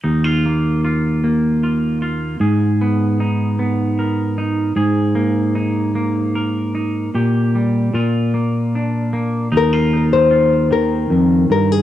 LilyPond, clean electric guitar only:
\new Staff \with { instrumentName = "Clean electric guitar" } { \time 3/4 \key ees \major \tempo 4 = 76 << { ees'16 f'16 bes8 f'8 bes8 f'8 f'8 | aes'8 ces'8 ees'8 ces'8 bes'8 ees'8 | aes'8 bes8 ees'8 bes8 bes'8 ees'8 | g'8 g8 f'8 bes8 d'8 bes8 |
ees'16 f'16 ees'8 f'2 | } \\ { ees,2. | aes,2. | aes,2. | bes,4 bes,2 |
ees,4. ees8 f,8 g,8 | } >> }